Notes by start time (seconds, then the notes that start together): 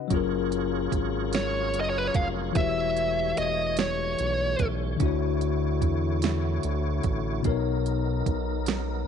Already playing: F#4 D#5 F#5
0.08 F#1 F#3 C#4 F4 G#4 A#4 C#5, kick, closed hi-hat
0.12 F4 G#4
0.17 A#4
0.52 closed hi-hat
0.92 G#1, kick, closed hi-hat
1.33 C#5, snare, closed hi-hat
1.74 F#1, closed hi-hat
1.80 D#5
1.90 C#5
1.98 B4
2.07 C#5
2.14 F1 F5, kick, closed hi-hat
2.52 E3 A3 E4 F#4, kick, closed hi-hat
2.56 E1 G3 G4 B4 E5
2.60 C#5
2.97 closed hi-hat
3.37 E1 D#5, closed hi-hat
3.77 C#5, snare, closed hi-hat
4.19 B1, closed hi-hat
4.59 B1, kick, closed hi-hat
4.97 D3 D4, kick, closed hi-hat
5.01 D2 D3 E4 F#4
5.06 C#5
5.41 closed hi-hat
5.82 E2, kick, closed hi-hat
6.22 snare, closed hi-hat
6.63 D2, closed hi-hat
7.03 A1, kick, closed hi-hat
7.41 B2 B3 D#4, kick, closed hi-hat
7.45 B1 B3 D#4 A#4
7.49 C#5
7.86 closed hi-hat
8.26 B1, kick, closed hi-hat
8.66 snare, closed hi-hat